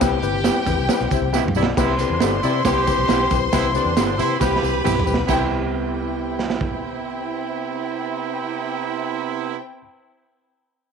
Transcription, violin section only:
0, 0, Header, 1, 2, 480
1, 0, Start_track
1, 0, Key_signature, 0, "major"
1, 0, Tempo, 440205
1, 14, Time_signature, 4, 2, 24, 8
1, 11910, End_track
2, 0, Start_track
2, 0, Title_t, "Violin section"
2, 0, Program_c, 0, 48
2, 10, Note_on_c, 0, 79, 100
2, 16, Note_on_c, 0, 67, 97
2, 1655, Note_off_c, 0, 79, 0
2, 1658, Note_off_c, 0, 67, 0
2, 1926, Note_on_c, 0, 72, 85
2, 1931, Note_on_c, 0, 84, 96
2, 4761, Note_off_c, 0, 72, 0
2, 4764, Note_off_c, 0, 84, 0
2, 4799, Note_on_c, 0, 83, 93
2, 4810, Note_on_c, 0, 71, 84
2, 5744, Note_off_c, 0, 83, 0
2, 5750, Note_off_c, 0, 71, 0
2, 5777, Note_on_c, 0, 79, 91
2, 5783, Note_on_c, 0, 60, 82
2, 5784, Note_on_c, 0, 64, 87
2, 10446, Note_off_c, 0, 79, 0
2, 10450, Note_off_c, 0, 60, 0
2, 10450, Note_off_c, 0, 64, 0
2, 11910, End_track
0, 0, End_of_file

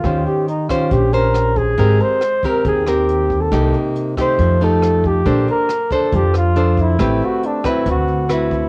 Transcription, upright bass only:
0, 0, Header, 1, 2, 480
1, 0, Start_track
1, 0, Tempo, 434783
1, 44, Time_signature, 4, 2, 24, 8
1, 9590, End_track
2, 0, Start_track
2, 0, Title_t, "Upright bass"
2, 0, Program_c, 0, 32
2, 39, Note_on_c, 0, 39, 87
2, 265, Note_off_c, 0, 39, 0
2, 1003, Note_on_c, 0, 34, 77
2, 1920, Note_off_c, 0, 34, 0
2, 1963, Note_on_c, 0, 32, 88
2, 2187, Note_off_c, 0, 32, 0
2, 2926, Note_on_c, 0, 39, 80
2, 3842, Note_off_c, 0, 39, 0
2, 3882, Note_on_c, 0, 36, 84
2, 4107, Note_off_c, 0, 36, 0
2, 4840, Note_on_c, 0, 41, 76
2, 5758, Note_off_c, 0, 41, 0
2, 5801, Note_on_c, 0, 34, 83
2, 6026, Note_off_c, 0, 34, 0
2, 6760, Note_on_c, 0, 41, 80
2, 7678, Note_off_c, 0, 41, 0
2, 7719, Note_on_c, 0, 33, 85
2, 7945, Note_off_c, 0, 33, 0
2, 8679, Note_on_c, 0, 38, 82
2, 9590, Note_off_c, 0, 38, 0
2, 9590, End_track
0, 0, End_of_file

